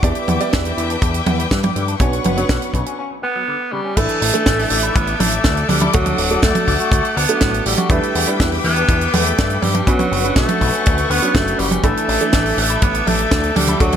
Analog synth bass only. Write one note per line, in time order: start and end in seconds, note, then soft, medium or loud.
0.03 0.13 E2 loud
0.28 0.38 E2 medium
0.54 0.73 E2 medium
0.77 0.97 E2 medium
1.02 1.21 E2 medium
1.27 1.46 E2 loud
1.51 1.71 G2 loud
1.76 1.95 G2 medium
2.00 2.20 B1 loud
2.25 2.44 F#1 medium
2.49 2.59 B1 loud
2.74 2.84 B1 loud
3.97 4.07 A1 loud
4.22 4.31 A1 medium
4.46 4.66 A1 medium
4.71 4.90 A1 medium
4.96 5.15 A1 loud
5.20 5.39 A1 loud
5.45 5.64 D2 loud
5.69 5.89 D2 medium
5.94 6.14 D2 loud
6.18 6.38 D1 medium
6.43 6.53 D2 loud
6.68 6.77 D2 loud
6.92 7.02 D2 medium
7.17 7.26 D2 medium
7.42 7.61 A1 loud
7.66 7.76 A1 loud
7.90 8.00 E2 loud
8.15 8.25 E2 loud
8.40 8.59 E2 medium
8.64 8.84 E2 medium
8.89 9.08 E2 medium
9.14 9.33 E2 loud
9.39 9.58 G2 loud
9.63 9.82 G2 medium
9.87 10.07 B1 loud
10.12 10.31 F#1 medium
10.36 10.46 B1 loud
10.61 10.71 B1 loud
10.87 11.06 D2 medium
11.10 11.20 D2 medium
11.35 11.54 F#1 medium
11.59 11.79 F#1 loud
11.84 11.94 A1 loud
12.08 12.18 A1 loud
12.34 12.53 A1 medium
12.58 12.77 A1 medium
12.82 13.02 A1 medium
13.07 13.26 A1 loud
13.32 13.51 D2 loud
13.56 13.76 D2 loud
13.80 13.96 D2 loud